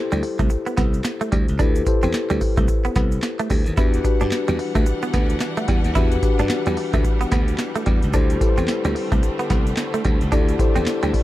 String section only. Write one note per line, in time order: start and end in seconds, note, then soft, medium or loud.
3.77 8.09 E3 medium
3.77 11.23 G3 medium
3.77 8.10 D4 medium
3.77 8.10 F#5 medium
8.14 11.23 D3 medium
8.14 11.23 A3 medium
8.14 10.30 C4 medium
10.32 11.23 D4 medium